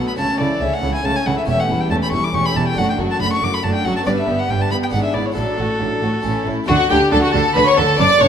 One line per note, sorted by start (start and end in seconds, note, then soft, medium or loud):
0.00 0.17 B2 soft
0.00 0.19 F#3 soft
0.00 0.12 A3 soft
0.00 0.18 B3 soft
0.00 0.13 D4 soft
0.00 0.13 F#4 soft
0.00 0.18 A4 soft
0.08 0.12 B5 medium
0.14 0.26 C#2 medium
0.14 0.26 C#3 medium
0.14 1.42 A3 soft
0.14 1.43 C#4 soft
0.14 0.38 C#4 soft
0.14 1.43 E4 soft
0.14 0.38 C#5 soft
0.14 0.39 A5 medium
0.19 0.38 C#3 soft
0.19 0.39 A3 soft
0.39 0.48 C#2 medium
0.39 0.48 C#3 soft
0.39 0.59 C#3 soft
0.39 0.62 E3 soft
0.39 0.61 E4 soft
0.39 0.61 A4 soft
0.39 0.62 D5 medium
0.61 0.69 C#2 medium
0.61 0.69 C#3 medium
0.61 0.81 C#3 soft
0.61 0.83 A3 soft
0.61 0.83 C#4 soft
0.61 0.83 C#5 soft
0.61 0.75 E5 medium
0.73 0.94 F#5 medium
0.82 0.91 C#2 medium
0.82 0.91 C#3 medium
0.82 1.02 C#3 medium
0.82 1.05 E3 soft
0.82 1.04 E4 soft
0.82 1.04 A4 soft
0.95 1.06 G#5 medium
1.04 1.12 C#2 medium
1.04 1.12 C#3 medium
1.04 1.24 C#3 soft
1.04 1.25 A3 soft
1.04 1.24 C#4 soft
1.04 1.24 C#5 soft
1.04 1.17 A5 medium
1.16 1.28 G#5 medium
1.25 1.34 C#2 medium
1.25 1.34 C#3 medium
1.25 1.46 C#3 soft
1.25 1.48 E3 soft
1.25 1.48 E4 soft
1.25 1.47 A4 soft
1.25 1.37 F#5 medium
1.38 1.42 E5 medium
1.44 1.55 E2 medium
1.44 2.71 A3 soft
1.44 2.72 C#4 soft
1.44 1.68 C#4 medium
1.44 2.73 G4 soft
1.44 1.68 G4 soft
1.48 1.56 E1 medium
1.48 1.68 E2 soft
1.48 1.68 A3 medium
1.48 1.61 E5 medium
1.60 1.82 F#5 medium
1.68 1.77 E1 medium
1.68 1.77 E2 medium
1.68 1.89 E2 soft
1.68 1.91 G3 soft
1.68 1.91 E4 soft
1.68 1.90 A4 soft
1.81 1.90 G5 medium
1.90 1.98 E1 medium
1.90 1.99 E2 medium
1.90 2.11 E2 soft
1.90 2.12 A3 soft
1.90 2.12 C#4 soft
1.90 2.12 G4 soft
1.90 1.95 A5 medium
2.03 2.11 B5 medium
2.12 2.20 E1 medium
2.12 2.32 E2 soft
2.12 2.21 E2 medium
2.12 2.34 G3 medium
2.12 2.34 E4 soft
2.12 2.34 A4 soft
2.12 2.25 C#6 medium
2.24 2.36 D6 medium
2.33 2.41 E1 medium
2.33 2.42 E2 medium
2.33 2.54 E2 soft
2.33 2.54 A3 soft
2.33 2.53 C#4 medium
2.33 2.54 G4 soft
2.33 2.47 C#6 medium
2.46 2.58 B5 medium
2.55 2.64 E1 medium
2.55 2.63 E2 medium
2.55 2.75 E2 soft
2.55 2.78 G3 soft
2.55 2.77 E4 soft
2.55 2.77 A4 soft
2.55 2.67 A5 medium
2.68 2.80 G5 medium
2.72 4.00 A3 soft
2.72 4.01 D4 soft
2.72 4.02 F#4 soft
2.76 2.85 F#1 medium
2.76 2.96 F#2 soft
2.76 2.85 F#2 medium
2.76 2.98 A3 soft
2.76 2.97 D4 medium
2.76 2.98 F#4 soft
2.76 2.89 F#5 medium
2.90 2.98 G5 medium
2.98 3.07 F#1 medium
2.98 3.18 F#2 soft
2.98 3.06 F#2 soft
2.98 3.20 F#3 medium
2.98 3.20 F#4 soft
2.98 3.21 A4 soft
3.11 3.21 A5 medium
3.19 3.29 F#1 medium
3.19 3.40 F#2 soft
3.19 3.28 F#2 medium
3.19 3.42 A3 medium
3.19 3.42 D4 soft
3.19 3.42 F#4 soft
3.19 3.32 B5 medium
3.33 3.45 C#6 medium
3.41 3.51 F#1 medium
3.41 3.61 F#2 soft
3.41 3.50 F#2 medium
3.41 3.63 F#3 soft
3.41 3.63 F#4 soft
3.41 3.63 A4 soft
3.41 3.56 D6 medium
3.54 3.65 B5 medium
3.63 3.72 F#1 medium
3.63 3.71 F#2 medium
3.63 3.83 F#2 soft
3.63 3.83 A3 soft
3.63 3.83 D4 medium
3.63 3.83 F#4 soft
3.63 3.74 A5 medium
3.74 3.86 G5 medium
3.84 3.94 F#1 medium
3.84 3.93 F#2 medium
3.84 4.04 F#2 soft
3.84 4.06 F#3 soft
3.84 4.07 F#4 soft
3.84 4.06 A4 soft
3.84 3.96 F#5 medium
3.97 4.01 A5 medium
4.01 4.87 B3 soft
4.01 4.89 D4 soft
4.01 4.90 B4 soft
4.06 4.15 G1 medium
4.06 4.26 G2 soft
4.06 4.14 G2 medium
4.06 4.26 G3 medium
4.06 4.26 D4 medium
4.06 4.27 B4 soft
4.06 4.11 D5 medium
4.18 4.41 E5 medium
4.28 4.36 G1 medium
4.28 4.48 G2 soft
4.28 4.36 G2 medium
4.28 4.50 B3 soft
4.28 4.50 B3 medium
4.28 4.50 G4 soft
4.39 4.51 F#5 medium
4.49 4.58 G1 medium
4.49 4.69 G2 soft
4.49 4.58 G2 medium
4.49 4.72 G3 medium
4.49 4.71 D4 soft
4.49 4.72 B4 soft
4.49 4.63 G5 medium
4.61 4.71 A5 medium
4.71 4.79 G1 soft
4.71 4.91 G2 soft
4.71 4.80 G2 medium
4.71 4.93 B3 soft
4.71 4.93 G4 soft
4.71 4.76 B5 medium
4.83 4.87 G5 medium
4.88 5.33 B3 soft
4.88 5.32 D4 soft
4.88 5.35 B4 soft
4.92 5.01 G#1 medium
4.92 5.13 G#2 soft
4.92 5.01 G#2 medium
4.92 5.14 G#3 soft
4.92 5.14 D4 soft
4.92 5.13 G#4 soft
4.92 5.03 F#5 medium
5.04 5.15 E5 medium
5.14 5.23 G#1 soft
5.14 5.23 G#2 medium
5.14 5.35 G#2 soft
5.14 5.37 B3 soft
5.14 5.37 E4 soft
5.14 5.27 D5 medium
5.26 5.36 C#5 medium
5.32 6.19 A3 soft
5.32 6.20 D4 soft
5.32 6.21 F#4 soft
5.36 5.45 A1 medium
5.36 5.44 A2 medium
5.36 5.57 A2 soft
5.36 5.57 F#3 medium
5.36 5.57 D4 soft
5.36 6.44 A4 medium
5.36 5.57 A4 soft
5.58 5.67 A1 soft
5.58 5.66 A2 soft
5.58 5.79 A2 soft
5.58 5.81 A3 soft
5.58 5.81 F#4 soft
5.80 5.89 A1 medium
5.80 6.00 A2 soft
5.80 5.89 A2 soft
5.80 6.03 F#3 soft
5.80 6.03 D4 soft
5.80 6.03 A4 soft
6.02 6.10 A1 medium
6.02 6.22 A2 soft
6.02 6.10 A2 medium
6.02 6.25 A3 soft
6.02 6.24 F#4 soft
6.02 6.25 F#4 soft
6.20 6.45 E3 soft
6.20 6.63 A3 soft
6.20 6.66 C#4 soft
6.20 6.45 C#4 soft
6.20 6.67 E4 soft
6.20 6.44 A4 soft
6.24 6.32 A1 medium
6.24 6.32 A2 medium
6.24 6.45 A2 soft
6.46 6.55 A1 soft
6.46 6.54 A2 medium
6.46 6.67 A2 soft
6.46 6.68 A3 soft
6.46 6.68 E4 soft
6.46 6.69 E4 medium
6.64 6.76 D2 medium
6.64 6.76 D3 medium
6.64 7.93 A3 medium
6.64 7.94 D4 soft
6.64 7.95 F#4 soft
6.64 6.76 F#4 medium
6.64 6.88 F#5 loud
6.68 6.88 D3 medium
6.68 6.76 D4 medium
6.68 6.89 F#4 medium
6.89 6.98 D2 medium
6.89 6.98 D3 medium
6.89 7.10 D3 medium
6.89 6.99 D4 medium
6.89 7.12 G4 medium
6.89 7.14 G4 medium
6.89 6.97 G5 medium
7.11 7.20 D2 medium
7.11 7.20 D3 medium
7.11 7.32 D3 medium
7.11 7.19 D4 medium
7.11 7.22 A4 medium
7.11 7.23 A4 medium
7.11 7.22 A5 medium
7.22 7.34 F#4 medium
7.22 7.32 F#4 medium
7.22 7.33 F#5 medium
7.32 7.42 D2 medium
7.32 7.41 D3 medium
7.32 7.54 D3 medium
7.32 7.42 D4 medium
7.32 7.55 A4 medium
7.32 7.56 A4 medium
7.32 7.55 A5 loud
7.54 7.64 D2 medium
7.54 7.64 D3 medium
7.54 7.76 D3 medium
7.54 7.64 D4 medium
7.54 7.67 B4 medium
7.54 7.66 B4 medium
7.54 7.66 B5 loud
7.66 7.79 C#5 medium
7.66 7.78 C#5 medium
7.66 7.77 C#6 medium
7.76 7.86 D2 medium
7.76 7.85 D3 medium
7.76 7.97 D3 medium
7.76 7.85 D4 medium
7.76 7.99 A4 medium
7.76 7.99 A5 loud
7.94 8.28 A3 soft
7.94 8.28 D4 medium
7.94 8.28 F#4 medium
7.94 8.20 D6 loud
7.99 8.08 F#1 medium
7.99 8.19 F#2 medium
7.99 8.08 F#2 medium
7.99 8.07 D4 medium
7.99 8.21 D5 loud
7.99 8.22 D5 loud
8.20 8.28 F#1 medium
8.20 8.28 F#2 medium
8.20 8.28 D4 medium
8.20 8.28 C#5 medium
8.20 8.28 C#6 medium